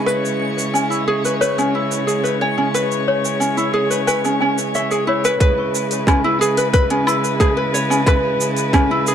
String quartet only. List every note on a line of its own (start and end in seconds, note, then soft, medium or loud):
0.00 5.36 C#3 medium
0.00 5.36 G#3 medium
0.00 5.36 E4 medium
0.08 5.37 C#5 medium
5.40 9.15 C#3 medium
5.40 9.15 G#3 medium
5.40 9.15 E4 medium
5.40 9.15 B4 medium